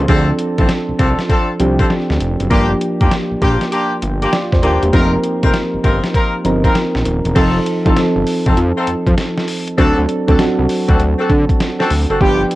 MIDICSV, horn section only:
0, 0, Header, 1, 2, 480
1, 0, Start_track
1, 0, Tempo, 606061
1, 67, Time_signature, 4, 2, 24, 8
1, 9941, End_track
2, 0, Start_track
2, 0, Title_t, "Horn section"
2, 0, Program_c, 0, 61
2, 65, Note_on_c, 0, 60, 96
2, 67, Note_on_c, 0, 62, 82
2, 68, Note_on_c, 0, 65, 85
2, 70, Note_on_c, 0, 69, 98
2, 228, Note_off_c, 0, 60, 0
2, 229, Note_off_c, 0, 62, 0
2, 230, Note_off_c, 0, 65, 0
2, 230, Note_off_c, 0, 69, 0
2, 461, Note_on_c, 0, 60, 74
2, 463, Note_on_c, 0, 62, 67
2, 465, Note_on_c, 0, 65, 65
2, 466, Note_on_c, 0, 69, 74
2, 557, Note_off_c, 0, 60, 0
2, 558, Note_off_c, 0, 62, 0
2, 559, Note_off_c, 0, 65, 0
2, 560, Note_off_c, 0, 69, 0
2, 785, Note_on_c, 0, 60, 82
2, 786, Note_on_c, 0, 62, 67
2, 787, Note_on_c, 0, 65, 67
2, 789, Note_on_c, 0, 69, 79
2, 948, Note_off_c, 0, 60, 0
2, 949, Note_off_c, 0, 62, 0
2, 949, Note_off_c, 0, 65, 0
2, 950, Note_off_c, 0, 69, 0
2, 1025, Note_on_c, 0, 60, 77
2, 1026, Note_on_c, 0, 62, 72
2, 1028, Note_on_c, 0, 65, 74
2, 1030, Note_on_c, 0, 69, 91
2, 1188, Note_off_c, 0, 60, 0
2, 1189, Note_off_c, 0, 62, 0
2, 1190, Note_off_c, 0, 65, 0
2, 1190, Note_off_c, 0, 69, 0
2, 1420, Note_on_c, 0, 60, 78
2, 1422, Note_on_c, 0, 62, 68
2, 1423, Note_on_c, 0, 65, 72
2, 1425, Note_on_c, 0, 69, 82
2, 1517, Note_off_c, 0, 60, 0
2, 1518, Note_off_c, 0, 62, 0
2, 1518, Note_off_c, 0, 65, 0
2, 1519, Note_off_c, 0, 69, 0
2, 1984, Note_on_c, 0, 58, 90
2, 1986, Note_on_c, 0, 62, 84
2, 1987, Note_on_c, 0, 65, 88
2, 1989, Note_on_c, 0, 67, 103
2, 2148, Note_off_c, 0, 58, 0
2, 2148, Note_off_c, 0, 62, 0
2, 2149, Note_off_c, 0, 65, 0
2, 2150, Note_off_c, 0, 67, 0
2, 2380, Note_on_c, 0, 58, 72
2, 2382, Note_on_c, 0, 62, 64
2, 2384, Note_on_c, 0, 65, 62
2, 2385, Note_on_c, 0, 67, 78
2, 2477, Note_off_c, 0, 58, 0
2, 2478, Note_off_c, 0, 62, 0
2, 2479, Note_off_c, 0, 65, 0
2, 2479, Note_off_c, 0, 67, 0
2, 2704, Note_on_c, 0, 58, 72
2, 2706, Note_on_c, 0, 62, 69
2, 2707, Note_on_c, 0, 65, 71
2, 2708, Note_on_c, 0, 67, 86
2, 2867, Note_off_c, 0, 58, 0
2, 2868, Note_off_c, 0, 62, 0
2, 2869, Note_off_c, 0, 65, 0
2, 2870, Note_off_c, 0, 67, 0
2, 2945, Note_on_c, 0, 58, 77
2, 2946, Note_on_c, 0, 62, 70
2, 2948, Note_on_c, 0, 65, 69
2, 2949, Note_on_c, 0, 67, 86
2, 3108, Note_off_c, 0, 58, 0
2, 3109, Note_off_c, 0, 62, 0
2, 3110, Note_off_c, 0, 65, 0
2, 3110, Note_off_c, 0, 67, 0
2, 3341, Note_on_c, 0, 58, 77
2, 3343, Note_on_c, 0, 62, 68
2, 3344, Note_on_c, 0, 65, 69
2, 3346, Note_on_c, 0, 67, 83
2, 3437, Note_off_c, 0, 58, 0
2, 3438, Note_off_c, 0, 62, 0
2, 3439, Note_off_c, 0, 65, 0
2, 3439, Note_off_c, 0, 67, 0
2, 3666, Note_on_c, 0, 58, 74
2, 3668, Note_on_c, 0, 62, 69
2, 3669, Note_on_c, 0, 65, 70
2, 3671, Note_on_c, 0, 67, 81
2, 3828, Note_off_c, 0, 58, 0
2, 3829, Note_off_c, 0, 62, 0
2, 3830, Note_off_c, 0, 65, 0
2, 3831, Note_off_c, 0, 67, 0
2, 3905, Note_on_c, 0, 60, 86
2, 3906, Note_on_c, 0, 63, 85
2, 3908, Note_on_c, 0, 65, 82
2, 3909, Note_on_c, 0, 70, 106
2, 4068, Note_off_c, 0, 60, 0
2, 4068, Note_off_c, 0, 63, 0
2, 4070, Note_off_c, 0, 65, 0
2, 4070, Note_off_c, 0, 70, 0
2, 4300, Note_on_c, 0, 60, 73
2, 4302, Note_on_c, 0, 63, 64
2, 4303, Note_on_c, 0, 65, 67
2, 4305, Note_on_c, 0, 70, 80
2, 4397, Note_off_c, 0, 60, 0
2, 4397, Note_off_c, 0, 63, 0
2, 4398, Note_off_c, 0, 65, 0
2, 4399, Note_off_c, 0, 70, 0
2, 4624, Note_on_c, 0, 60, 71
2, 4625, Note_on_c, 0, 63, 71
2, 4628, Note_on_c, 0, 65, 70
2, 4629, Note_on_c, 0, 70, 81
2, 4788, Note_off_c, 0, 60, 0
2, 4788, Note_off_c, 0, 63, 0
2, 4789, Note_off_c, 0, 65, 0
2, 4790, Note_off_c, 0, 70, 0
2, 4865, Note_on_c, 0, 60, 74
2, 4867, Note_on_c, 0, 63, 71
2, 4868, Note_on_c, 0, 65, 70
2, 4870, Note_on_c, 0, 70, 84
2, 5028, Note_off_c, 0, 60, 0
2, 5029, Note_off_c, 0, 63, 0
2, 5030, Note_off_c, 0, 65, 0
2, 5030, Note_off_c, 0, 70, 0
2, 5260, Note_on_c, 0, 60, 73
2, 5261, Note_on_c, 0, 63, 70
2, 5263, Note_on_c, 0, 65, 68
2, 5265, Note_on_c, 0, 70, 79
2, 5356, Note_off_c, 0, 60, 0
2, 5357, Note_off_c, 0, 63, 0
2, 5358, Note_off_c, 0, 65, 0
2, 5359, Note_off_c, 0, 70, 0
2, 5823, Note_on_c, 0, 60, 88
2, 5824, Note_on_c, 0, 63, 85
2, 5826, Note_on_c, 0, 65, 89
2, 5827, Note_on_c, 0, 69, 97
2, 5987, Note_off_c, 0, 60, 0
2, 5988, Note_off_c, 0, 63, 0
2, 5988, Note_off_c, 0, 65, 0
2, 5989, Note_off_c, 0, 69, 0
2, 6220, Note_on_c, 0, 60, 68
2, 6222, Note_on_c, 0, 63, 68
2, 6223, Note_on_c, 0, 65, 64
2, 6225, Note_on_c, 0, 69, 79
2, 6317, Note_off_c, 0, 60, 0
2, 6317, Note_off_c, 0, 63, 0
2, 6318, Note_off_c, 0, 65, 0
2, 6319, Note_off_c, 0, 69, 0
2, 6700, Note_on_c, 0, 60, 71
2, 6702, Note_on_c, 0, 63, 64
2, 6703, Note_on_c, 0, 65, 61
2, 6705, Note_on_c, 0, 69, 76
2, 6797, Note_off_c, 0, 60, 0
2, 6797, Note_off_c, 0, 63, 0
2, 6798, Note_off_c, 0, 65, 0
2, 6799, Note_off_c, 0, 69, 0
2, 6940, Note_on_c, 0, 60, 68
2, 6941, Note_on_c, 0, 63, 65
2, 6942, Note_on_c, 0, 65, 68
2, 6944, Note_on_c, 0, 69, 75
2, 7037, Note_off_c, 0, 60, 0
2, 7037, Note_off_c, 0, 63, 0
2, 7038, Note_off_c, 0, 65, 0
2, 7039, Note_off_c, 0, 69, 0
2, 7745, Note_on_c, 0, 60, 91
2, 7746, Note_on_c, 0, 62, 89
2, 7747, Note_on_c, 0, 66, 84
2, 7749, Note_on_c, 0, 69, 105
2, 7908, Note_off_c, 0, 60, 0
2, 7908, Note_off_c, 0, 62, 0
2, 7909, Note_off_c, 0, 66, 0
2, 7910, Note_off_c, 0, 69, 0
2, 8140, Note_on_c, 0, 60, 68
2, 8142, Note_on_c, 0, 62, 70
2, 8143, Note_on_c, 0, 66, 62
2, 8145, Note_on_c, 0, 69, 80
2, 8237, Note_off_c, 0, 60, 0
2, 8238, Note_off_c, 0, 62, 0
2, 8238, Note_off_c, 0, 66, 0
2, 8239, Note_off_c, 0, 69, 0
2, 8620, Note_on_c, 0, 60, 69
2, 8622, Note_on_c, 0, 62, 73
2, 8624, Note_on_c, 0, 66, 65
2, 8625, Note_on_c, 0, 69, 79
2, 8717, Note_off_c, 0, 60, 0
2, 8717, Note_off_c, 0, 62, 0
2, 8718, Note_off_c, 0, 66, 0
2, 8719, Note_off_c, 0, 69, 0
2, 8860, Note_on_c, 0, 60, 78
2, 8862, Note_on_c, 0, 62, 66
2, 8863, Note_on_c, 0, 66, 72
2, 8865, Note_on_c, 0, 69, 87
2, 8957, Note_off_c, 0, 60, 0
2, 8958, Note_off_c, 0, 62, 0
2, 8958, Note_off_c, 0, 66, 0
2, 8959, Note_off_c, 0, 69, 0
2, 9340, Note_on_c, 0, 60, 82
2, 9342, Note_on_c, 0, 62, 75
2, 9344, Note_on_c, 0, 66, 70
2, 9345, Note_on_c, 0, 69, 81
2, 9437, Note_off_c, 0, 60, 0
2, 9438, Note_off_c, 0, 62, 0
2, 9439, Note_off_c, 0, 66, 0
2, 9439, Note_off_c, 0, 69, 0
2, 9581, Note_on_c, 0, 60, 79
2, 9582, Note_on_c, 0, 62, 69
2, 9584, Note_on_c, 0, 66, 69
2, 9585, Note_on_c, 0, 69, 85
2, 9657, Note_off_c, 0, 62, 0
2, 9664, Note_on_c, 0, 59, 98
2, 9666, Note_on_c, 0, 62, 87
2, 9667, Note_on_c, 0, 65, 82
2, 9669, Note_on_c, 0, 67, 110
2, 9677, Note_off_c, 0, 60, 0
2, 9679, Note_off_c, 0, 66, 0
2, 9679, Note_off_c, 0, 69, 0
2, 9828, Note_off_c, 0, 59, 0
2, 9828, Note_off_c, 0, 62, 0
2, 9829, Note_off_c, 0, 65, 0
2, 9830, Note_off_c, 0, 67, 0
2, 9941, End_track
0, 0, End_of_file